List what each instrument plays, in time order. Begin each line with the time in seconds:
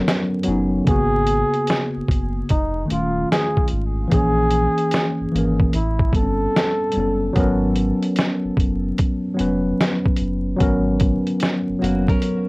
Already playing: tine electric piano F#3 B3 C#4 A4 A#4
0.08 snare, closed hi-hat
0.43 tine electric piano F#3 B3, closed hi-hat
0.48 sub bass F#1, tine electric piano C#4 D#4
0.84 sub bass G#1, tine electric piano C#3 A#3, kick, closed hi-hat
0.89 tine electric piano B3 F#4, flugelhorn G#4
1.27 closed hi-hat
1.54 closed hi-hat
1.67 snare, closed hi-hat
1.97 sub bass F#1
2.08 sub bass F#1, kick, closed hi-hat
2.49 sub bass F1, flugelhorn D#4, kick, closed hi-hat
2.86 tine electric piano D#3 A3
2.90 sub bass D#1, tine electric piano C#4 F4, flugelhorn F4, closed hi-hat
3.32 flugelhorn G#4, snare, closed hi-hat
3.57 kick
3.68 closed hi-hat
3.72 sub bass G#1
4.08 tine electric piano E3 A#3, closed hi-hat
4.12 sub bass A#1, tine electric piano C#4 G#4, flugelhorn G#4, kick
4.51 closed hi-hat
4.78 closed hi-hat
4.91 snare, closed hi-hat
5.21 sub bass G#1
5.32 sub bass G#1, tine electric piano E3 A#3, closed hi-hat
5.36 tine electric piano C#4 A#4
5.60 kick
5.73 sub bass A1, flugelhorn E4, closed hi-hat
5.99 kick
6.12 sub bass G1, tine electric piano G3 B3, flugelhorn A4, kick, closed hi-hat
6.16 tine electric piano C4 A4
6.22 tine electric piano C#4
6.56 snare, closed hi-hat
6.92 tine electric piano G3 B3, closed hi-hat
6.96 sub bass F#1, tine electric piano C#4 A4
7.33 sub bass G#1, tine electric piano F#3 B3, kick, closed hi-hat
7.37 tine electric piano C#4 A#4
7.75 closed hi-hat
8.03 closed hi-hat
8.16 snare, closed hi-hat
8.45 sub bass F#1
8.57 sub bass F#1, kick, closed hi-hat
8.98 kick, closed hi-hat
9.34 tine electric piano F#3 B3
9.39 sub bass F1, tine electric piano C#4 B4, closed hi-hat
9.81 snare, closed hi-hat
10.06 kick
10.16 closed hi-hat
10.21 sub bass F#1
10.56 tine electric piano F#3 B3 C#4, closed hi-hat
10.60 sub bass G#1, tine electric piano A#4, kick
11.00 kick, closed hi-hat
11.27 closed hi-hat
11.40 snare, closed hi-hat
11.69 sub bass F#1
11.79 sub bass F#1, tine electric piano F#3 B3, nylon-string guitar A#3 F#4
11.83 tine electric piano C#4 A#4, closed hi-hat
12.08 nylon-string guitar C#4 A#4, kick, closed hi-hat
12.22 closed hi-hat